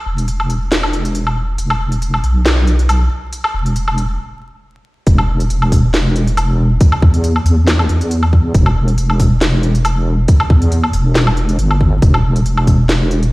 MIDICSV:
0, 0, Header, 1, 3, 480
1, 0, Start_track
1, 0, Key_signature, 1, "minor"
1, 0, Tempo, 434783
1, 1752, Time_signature, 4, 2, 24, 8
1, 14712, End_track
2, 0, Start_track
2, 0, Title_t, "Wobble bass"
2, 0, Program_c, 0, 39
2, 71, Note_on_c, 0, 28, 95
2, 774, Note_off_c, 0, 28, 0
2, 790, Note_on_c, 0, 28, 99
2, 1734, Note_off_c, 0, 28, 0
2, 1751, Note_on_c, 0, 28, 96
2, 2454, Note_off_c, 0, 28, 0
2, 2470, Note_on_c, 0, 35, 95
2, 3414, Note_off_c, 0, 35, 0
2, 3913, Note_on_c, 0, 28, 98
2, 4615, Note_off_c, 0, 28, 0
2, 5595, Note_on_c, 0, 28, 97
2, 6056, Note_off_c, 0, 28, 0
2, 6075, Note_on_c, 0, 28, 99
2, 7496, Note_off_c, 0, 28, 0
2, 7755, Note_on_c, 0, 40, 97
2, 8216, Note_off_c, 0, 40, 0
2, 8232, Note_on_c, 0, 40, 96
2, 8695, Note_off_c, 0, 40, 0
2, 8713, Note_on_c, 0, 40, 96
2, 9415, Note_off_c, 0, 40, 0
2, 9434, Note_on_c, 0, 28, 97
2, 9895, Note_off_c, 0, 28, 0
2, 9910, Note_on_c, 0, 28, 95
2, 11334, Note_off_c, 0, 28, 0
2, 11594, Note_on_c, 0, 40, 100
2, 12055, Note_off_c, 0, 40, 0
2, 12073, Note_on_c, 0, 28, 99
2, 12775, Note_off_c, 0, 28, 0
2, 12792, Note_on_c, 0, 31, 95
2, 13255, Note_off_c, 0, 31, 0
2, 13274, Note_on_c, 0, 28, 98
2, 13736, Note_off_c, 0, 28, 0
2, 13753, Note_on_c, 0, 28, 98
2, 14712, Note_off_c, 0, 28, 0
2, 14712, End_track
3, 0, Start_track
3, 0, Title_t, "Drums"
3, 202, Note_on_c, 9, 42, 51
3, 309, Note_off_c, 9, 42, 0
3, 309, Note_on_c, 9, 42, 78
3, 419, Note_off_c, 9, 42, 0
3, 440, Note_on_c, 9, 77, 46
3, 549, Note_on_c, 9, 42, 54
3, 550, Note_off_c, 9, 77, 0
3, 660, Note_off_c, 9, 42, 0
3, 790, Note_on_c, 9, 38, 120
3, 790, Note_on_c, 9, 42, 80
3, 901, Note_off_c, 9, 38, 0
3, 901, Note_off_c, 9, 42, 0
3, 919, Note_on_c, 9, 77, 72
3, 1030, Note_off_c, 9, 77, 0
3, 1030, Note_on_c, 9, 42, 53
3, 1140, Note_off_c, 9, 42, 0
3, 1160, Note_on_c, 9, 42, 55
3, 1268, Note_off_c, 9, 42, 0
3, 1268, Note_on_c, 9, 42, 78
3, 1379, Note_off_c, 9, 42, 0
3, 1399, Note_on_c, 9, 77, 50
3, 1509, Note_off_c, 9, 77, 0
3, 1749, Note_on_c, 9, 42, 79
3, 1859, Note_off_c, 9, 42, 0
3, 1880, Note_on_c, 9, 77, 76
3, 1991, Note_off_c, 9, 77, 0
3, 2120, Note_on_c, 9, 42, 53
3, 2230, Note_off_c, 9, 42, 0
3, 2230, Note_on_c, 9, 42, 77
3, 2341, Note_off_c, 9, 42, 0
3, 2361, Note_on_c, 9, 77, 51
3, 2470, Note_on_c, 9, 42, 54
3, 2471, Note_off_c, 9, 77, 0
3, 2580, Note_off_c, 9, 42, 0
3, 2711, Note_on_c, 9, 38, 123
3, 2711, Note_on_c, 9, 42, 79
3, 2821, Note_off_c, 9, 38, 0
3, 2821, Note_off_c, 9, 42, 0
3, 2952, Note_on_c, 9, 42, 51
3, 3062, Note_off_c, 9, 42, 0
3, 3081, Note_on_c, 9, 42, 53
3, 3191, Note_off_c, 9, 42, 0
3, 3191, Note_on_c, 9, 42, 78
3, 3191, Note_on_c, 9, 77, 76
3, 3302, Note_off_c, 9, 42, 0
3, 3302, Note_off_c, 9, 77, 0
3, 3672, Note_on_c, 9, 42, 76
3, 3782, Note_off_c, 9, 42, 0
3, 3800, Note_on_c, 9, 77, 76
3, 3910, Note_off_c, 9, 77, 0
3, 4041, Note_on_c, 9, 42, 50
3, 4150, Note_off_c, 9, 42, 0
3, 4150, Note_on_c, 9, 42, 76
3, 4260, Note_off_c, 9, 42, 0
3, 4280, Note_on_c, 9, 77, 55
3, 4390, Note_off_c, 9, 77, 0
3, 4392, Note_on_c, 9, 42, 55
3, 4502, Note_off_c, 9, 42, 0
3, 5594, Note_on_c, 9, 42, 78
3, 5595, Note_on_c, 9, 36, 116
3, 5704, Note_off_c, 9, 42, 0
3, 5705, Note_off_c, 9, 36, 0
3, 5724, Note_on_c, 9, 77, 75
3, 5834, Note_off_c, 9, 77, 0
3, 5964, Note_on_c, 9, 42, 54
3, 6075, Note_off_c, 9, 42, 0
3, 6075, Note_on_c, 9, 42, 82
3, 6185, Note_off_c, 9, 42, 0
3, 6206, Note_on_c, 9, 77, 51
3, 6315, Note_on_c, 9, 36, 61
3, 6316, Note_off_c, 9, 77, 0
3, 6316, Note_on_c, 9, 46, 97
3, 6425, Note_off_c, 9, 36, 0
3, 6426, Note_off_c, 9, 46, 0
3, 6555, Note_on_c, 9, 38, 119
3, 6555, Note_on_c, 9, 42, 79
3, 6666, Note_off_c, 9, 38, 0
3, 6666, Note_off_c, 9, 42, 0
3, 6797, Note_on_c, 9, 42, 53
3, 6908, Note_off_c, 9, 42, 0
3, 6927, Note_on_c, 9, 42, 56
3, 7036, Note_off_c, 9, 42, 0
3, 7036, Note_on_c, 9, 42, 84
3, 7036, Note_on_c, 9, 77, 73
3, 7146, Note_off_c, 9, 42, 0
3, 7146, Note_off_c, 9, 77, 0
3, 7514, Note_on_c, 9, 42, 82
3, 7515, Note_on_c, 9, 36, 126
3, 7624, Note_off_c, 9, 42, 0
3, 7626, Note_off_c, 9, 36, 0
3, 7642, Note_on_c, 9, 77, 72
3, 7753, Note_off_c, 9, 77, 0
3, 7755, Note_on_c, 9, 36, 110
3, 7866, Note_off_c, 9, 36, 0
3, 7882, Note_on_c, 9, 42, 56
3, 7992, Note_off_c, 9, 42, 0
3, 7992, Note_on_c, 9, 42, 83
3, 8102, Note_off_c, 9, 42, 0
3, 8124, Note_on_c, 9, 77, 50
3, 8234, Note_off_c, 9, 77, 0
3, 8234, Note_on_c, 9, 46, 95
3, 8344, Note_off_c, 9, 46, 0
3, 8472, Note_on_c, 9, 38, 125
3, 8472, Note_on_c, 9, 42, 85
3, 8583, Note_off_c, 9, 38, 0
3, 8583, Note_off_c, 9, 42, 0
3, 8603, Note_on_c, 9, 77, 75
3, 8713, Note_off_c, 9, 77, 0
3, 8713, Note_on_c, 9, 42, 55
3, 8823, Note_off_c, 9, 42, 0
3, 8844, Note_on_c, 9, 42, 55
3, 8954, Note_off_c, 9, 42, 0
3, 8954, Note_on_c, 9, 42, 85
3, 9064, Note_off_c, 9, 42, 0
3, 9082, Note_on_c, 9, 77, 51
3, 9192, Note_off_c, 9, 77, 0
3, 9195, Note_on_c, 9, 36, 64
3, 9305, Note_off_c, 9, 36, 0
3, 9433, Note_on_c, 9, 42, 80
3, 9434, Note_on_c, 9, 36, 124
3, 9544, Note_off_c, 9, 42, 0
3, 9545, Note_off_c, 9, 36, 0
3, 9562, Note_on_c, 9, 77, 79
3, 9672, Note_off_c, 9, 77, 0
3, 9803, Note_on_c, 9, 42, 53
3, 9912, Note_off_c, 9, 42, 0
3, 9912, Note_on_c, 9, 42, 83
3, 10023, Note_off_c, 9, 42, 0
3, 10043, Note_on_c, 9, 77, 51
3, 10152, Note_on_c, 9, 46, 91
3, 10153, Note_off_c, 9, 77, 0
3, 10154, Note_on_c, 9, 36, 64
3, 10263, Note_off_c, 9, 46, 0
3, 10265, Note_off_c, 9, 36, 0
3, 10391, Note_on_c, 9, 38, 126
3, 10391, Note_on_c, 9, 42, 81
3, 10502, Note_off_c, 9, 38, 0
3, 10502, Note_off_c, 9, 42, 0
3, 10633, Note_on_c, 9, 42, 53
3, 10743, Note_off_c, 9, 42, 0
3, 10762, Note_on_c, 9, 42, 56
3, 10871, Note_off_c, 9, 42, 0
3, 10871, Note_on_c, 9, 42, 80
3, 10871, Note_on_c, 9, 77, 78
3, 10982, Note_off_c, 9, 42, 0
3, 10982, Note_off_c, 9, 77, 0
3, 11351, Note_on_c, 9, 42, 79
3, 11354, Note_on_c, 9, 36, 121
3, 11461, Note_off_c, 9, 42, 0
3, 11464, Note_off_c, 9, 36, 0
3, 11482, Note_on_c, 9, 77, 77
3, 11592, Note_off_c, 9, 77, 0
3, 11593, Note_on_c, 9, 36, 107
3, 11704, Note_off_c, 9, 36, 0
3, 11723, Note_on_c, 9, 42, 50
3, 11833, Note_off_c, 9, 42, 0
3, 11833, Note_on_c, 9, 42, 76
3, 11944, Note_off_c, 9, 42, 0
3, 11963, Note_on_c, 9, 77, 53
3, 12071, Note_on_c, 9, 46, 91
3, 12073, Note_off_c, 9, 77, 0
3, 12182, Note_off_c, 9, 46, 0
3, 12313, Note_on_c, 9, 38, 120
3, 12313, Note_on_c, 9, 42, 77
3, 12423, Note_off_c, 9, 38, 0
3, 12423, Note_off_c, 9, 42, 0
3, 12442, Note_on_c, 9, 77, 81
3, 12552, Note_off_c, 9, 77, 0
3, 12552, Note_on_c, 9, 42, 51
3, 12662, Note_off_c, 9, 42, 0
3, 12683, Note_on_c, 9, 42, 52
3, 12792, Note_off_c, 9, 42, 0
3, 12792, Note_on_c, 9, 42, 80
3, 12903, Note_off_c, 9, 42, 0
3, 12923, Note_on_c, 9, 77, 54
3, 13033, Note_off_c, 9, 77, 0
3, 13034, Note_on_c, 9, 36, 64
3, 13144, Note_off_c, 9, 36, 0
3, 13273, Note_on_c, 9, 42, 72
3, 13274, Note_on_c, 9, 36, 118
3, 13383, Note_off_c, 9, 42, 0
3, 13384, Note_off_c, 9, 36, 0
3, 13404, Note_on_c, 9, 77, 83
3, 13514, Note_off_c, 9, 77, 0
3, 13644, Note_on_c, 9, 42, 51
3, 13754, Note_off_c, 9, 42, 0
3, 13754, Note_on_c, 9, 42, 74
3, 13864, Note_off_c, 9, 42, 0
3, 13883, Note_on_c, 9, 77, 57
3, 13992, Note_on_c, 9, 46, 89
3, 13993, Note_on_c, 9, 36, 62
3, 13994, Note_off_c, 9, 77, 0
3, 14103, Note_off_c, 9, 46, 0
3, 14104, Note_off_c, 9, 36, 0
3, 14232, Note_on_c, 9, 38, 117
3, 14232, Note_on_c, 9, 42, 74
3, 14342, Note_off_c, 9, 38, 0
3, 14342, Note_off_c, 9, 42, 0
3, 14473, Note_on_c, 9, 42, 50
3, 14584, Note_off_c, 9, 42, 0
3, 14602, Note_on_c, 9, 42, 50
3, 14712, Note_off_c, 9, 42, 0
3, 14712, End_track
0, 0, End_of_file